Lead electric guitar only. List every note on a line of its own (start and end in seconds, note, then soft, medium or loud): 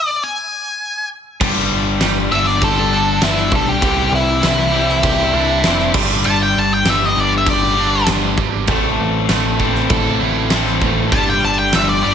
0.00 0.07 E5 loud
0.07 0.22 D5 loud
0.23 1.08 G#5 loud
2.32 2.47 E5 medium
2.47 2.61 D5 medium
2.64 3.22 A4 medium
3.23 3.52 E4 loud
3.55 3.69 A4 loud
3.69 4.12 G4 medium
4.15 5.92 E4 loud
6.26 6.40 A5 loud
6.43 6.59 G5 medium
6.59 6.72 A5 loud
6.74 6.90 G5 medium
6.90 7.06 E5 loud
7.06 7.20 D#5 medium
7.20 7.33 D5 medium
7.38 7.49 E5 loud
7.50 8.07 D5 loud
11.13 11.27 A5 loud
11.30 11.45 G5 medium
11.45 11.58 A5 loud
11.59 11.73 G5 loud
11.75 11.89 E5 medium
11.89 12.02 D5 medium
12.03 12.14 D5 medium